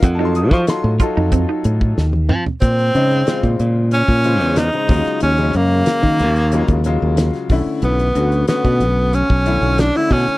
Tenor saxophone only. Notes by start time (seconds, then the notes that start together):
2.61 C4
3.93 C#4
4.58 D#4
5.23 C#4
5.56 A#3
7.84 B3
8.48 B3
9.14 C#4
9.80 D4
9.96 E4
10.13 C#4